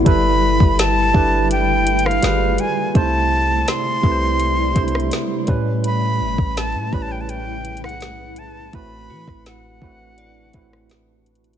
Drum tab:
HH |x-----------------------x-----------------------x-----------x---x---x---x-----------x-----------|x-----------------------x-----------------------x-----------x---x---x---x-----------x-----------|x-----------------------x-----------------------x-----------x---x---x---x-----------x-----------|x-----------------------x-----------------------x-----------x-----------x-----------x--x--x--x--|
SD |------------------------o-----------------------------------------r-----o-----------------------|------------------------o-----------------------------------------r-----o-----------------------|------------------------o-----------------------------------------r-----o-----------------------|------------------r-----o-----------------------------------------r-----o-----------------------|
BD |o-----------------o-----------------o-----------------------------------------------------------|o-----------------------------------o-----------------------o-----------------------o-----------|------------------o-----------------o-----------------------------------------------------------|o-----------------o-----------------o-----------------------o-----------------------------------|